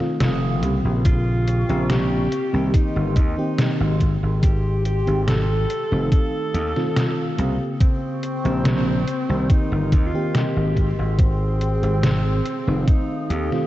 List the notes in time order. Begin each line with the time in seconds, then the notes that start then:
Already playing: A4 F5 D#6
0.00 D#3 A3 C4 F4, muted slap bass stroke, snare
0.20 F1, snare, closed hi-hat
0.61 C2 C#3 A#3 C4 G4, closed hi-hat
0.85 A#1
1.05 C4 F4 G5 C#6, kick, closed hi-hat
1.47 closed hi-hat
1.68 A#1 C#3 A#3 C4 G4, closed hi-hat
1.90 G4, snare, closed hi-hat
2.32 A#4 D#5 C6, closed hi-hat
2.53 C2 D#3 A#3 C4 G4
2.74 D#4, kick, closed hi-hat
2.96 G1
3.16 D#2 D#4, kick, closed hi-hat
3.37 D#3 A#3 C4 G4
3.59 snare, closed hi-hat
3.80 G#1
4.00 G4 G5, kick, closed hi-hat
4.23 G#1
4.43 G4, kick, closed hi-hat
4.85 G4, closed hi-hat
5.06 G#1 D#3 G#3 C4 G4, closed hi-hat
5.28 A4, snare, closed hi-hat
5.69 A4 F5 D#6, closed hi-hat
5.91 F1 D#3 A3 C4 D#4
6.12 A4, kick, closed hi-hat
6.54 D#2, closed hi-hat
6.75 D#3 A3 C4 F4, snare
6.96 snare, closed hi-hat
7.37 C2 C#3 A#3 C4 G4, closed hi-hat
7.80 C4 G5 C#6, kick, closed hi-hat
8.23 closed hi-hat
8.44 A#1 C#3 A#3 C4 G4, closed hi-hat
8.65 snare, closed hi-hat
9.07 A#4 D#5 C6, closed hi-hat
9.29 C2 D#3 A#3 C4 G4
9.50 D#4, kick, closed hi-hat
9.72 G1
9.92 D#2, kick, closed hi-hat
10.06 F4
10.13 D#3 A#3 C4 G4
10.35 G4, snare, closed hi-hat
10.56 G#1
10.76 G#4 G5, kick, closed hi-hat
10.99 G#1
11.19 C4, kick, closed hi-hat
11.61 closed hi-hat
11.82 G#1 D#3 G#3 C4 G4, closed hi-hat
12.03 snare, closed hi-hat
12.45 A4 F5 D#6, closed hi-hat
12.67 F1 D#3 A3 C4 D#4
12.88 D#4, kick, closed hi-hat
13.30 D#2 G4, closed hi-hat
13.51 D#3 A3 C4 F4, snare